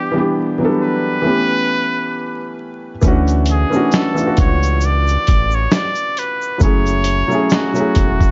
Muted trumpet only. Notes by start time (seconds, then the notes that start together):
Already playing: G4
0.82 B4
3.51 G#4
3.95 A4
4.40 C#5
4.85 D5
5.55 C#5
5.74 D5
6.18 B4
6.63 C#5
7.53 F#4